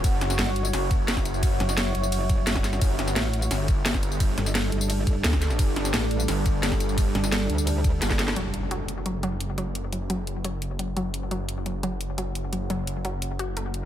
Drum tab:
RD |x---x---x---x---|x---x---x---x---|x---x---x---x---|x---x---x---x---|
HH |x-x-x-x-x-x-x-x-|x-x-x-x-x-x-x-x-|x-x-x-x-x-x-x-x-|x-x-x-x-x-x-x-x-|
TB |x--xx--xx-x-xxxx|x--xx--xx-x-xxxx|x--xx--xx-x-xxxx|x--xx--xx-x-xxxx|
SD |--ooo---o---oo--|--ooo-------oooo|--ooo---o---oo--|--ooo-------oooo|
BD |o---------o--o--|o---------o--o--|o---------o--o--|o---------o--o--|

RD |x---x---x---x---|x---x---x---x---|----------------|----------------|
HH |x-x-x-x-x-x-x-x-|x-x-x-x-x-x-x-x-|x-x-x-x-x-x-x-x-|x-x-x-x-x-x-x-x-|
TB |x--xx--xx-x-xxxx|x--xx--xx-x-xxxx|----------------|----------------|
SD |--ooo---o---oo--|--ooo-------oooo|----------------|----------------|
BD |o---------o--o--|o---------o--o--|----------------|----------------|

RD |----------------|----------------|
HH |x-x-x-x-x-x-x-x-|x-x-x-x-x-x-x-x-|
TB |----------------|----------------|
SD |----------------|----------------|
BD |----------------|----------------|